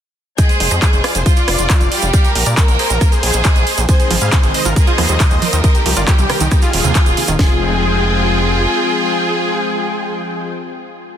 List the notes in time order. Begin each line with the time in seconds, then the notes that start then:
0.38 G#3 G#4 D#5 G5, kick, closed hi-hat, shaker
0.49 C5, closed hi-hat, shaker
0.60 F1 C5, open hi-hat
0.71 F2 C5 D#5, closed hi-hat, shaker
0.82 C5, kick, clap, closed hi-hat, shaker
0.93 F1 C5, closed hi-hat, shaker
1.04 F4 D5, cross-stick, open hi-hat
1.15 F1 C5, closed hi-hat, shaker
1.26 F4 C5, kick, closed hi-hat, shaker
1.36 F4 D5, closed hi-hat, shaker
1.48 F1, cross-stick, open hi-hat
1.59 F1, closed hi-hat, shaker
1.70 kick, clap, closed hi-hat, shaker
1.81 F1, closed hi-hat, shaker
1.92 G3 G4, open hi-hat
2.02 F1, closed hi-hat, shaker
2.14 D5 F5, kick, closed hi-hat, shaker
2.24 A#4, closed hi-hat, shaker
2.35 A#1 A#4, open hi-hat
2.46 A#2 A#4 D5, closed hi-hat, shaker
2.57 A#3 A#4, kick, clap, closed hi-hat, shaker
2.68 A#1 A#4, closed hi-hat, shaker
2.79 G#4 C5, open hi-hat
2.90 A#1 A#4, closed hi-hat, shaker
3.01 A#4, kick, cross-stick, closed hi-hat, shaker
3.12 G#4 C5, closed hi-hat, shaker
3.23 A#1 G#3 G#4, open hi-hat
3.33 A#1, closed hi-hat, shaker
3.44 kick, clap, closed hi-hat, shaker
3.56 A#1, closed hi-hat, shaker
3.67 open hi-hat
3.78 A#1, closed hi-hat, shaker
3.89 C3 D#3 F3 G#3 C4 D#4 C5 G#5, kick, closed hi-hat, shaker
4.00 G#4, closed hi-hat, shaker
4.11 G#1 F3 G#4, open hi-hat
4.21 G#2 C3 D#3 G3 G#3 D#4 G#4 F5, closed hi-hat, shaker
4.32 C3, kick, clap, closed hi-hat, shaker
4.43 G#1 G#4, closed hi-hat, shaker
4.54 C3 D#3 G#3 D#4 C5 D#5, open hi-hat
4.65 G#1 F4 A#4, closed hi-hat, shaker
4.76 D#3 F3 G#3 A#3 F4 G#4 A#4, kick, closed hi-hat, shaker
4.87 D#3 F3 A#3 F4 C5 D#5, closed hi-hat, shaker
4.98 D#2 D#3 F3 A#3 F4, cross-stick, open hi-hat
5.09 D#2 G3, closed hi-hat, shaker
5.20 C3, kick, clap, closed hi-hat, shaker
5.31 D#2 G#3, closed hi-hat, shaker
5.42 D#3 F3 A#3 F4 A#4, open hi-hat
5.53 D#2, closed hi-hat, shaker
5.64 D#3 F3 G3 C4 G4 C5 D#5, kick, closed hi-hat, shaker
5.75 G4, closed hi-hat, shaker
5.86 C2 F3 G4, open hi-hat
5.96 G1 D#3 G3 C4 F4 G4 A#4 D5, closed hi-hat, shaker
6.08 F3 G3 G4, kick, clap, closed hi-hat, shaker
6.19 C2 G3 G4, closed hi-hat, shaker
6.30 C3 D#3 G3 C4 G4 A#4, cross-stick, open hi-hat
6.40 C2 D#3 D#4, closed hi-hat, shaker
6.51 D#3 F3 A#3 D#4 F4, kick, cross-stick, closed hi-hat, shaker
6.62 D#3 F3 A#3 F4 G#4, closed hi-hat, shaker
6.73 D#1 D#3 F3 A#3 F4, open hi-hat
6.84 D#2 C3, closed hi-hat, shaker
6.95 F3, kick, clap, closed hi-hat, shaker
7.06 D#1, closed hi-hat, shaker
7.17 C3 D#3 F3 A#3 F4, open hi-hat
7.28 D#1 D#3, closed hi-hat, shaker
7.39 F1 F3 G#3 C4 F4 G#4 G5, kick, snare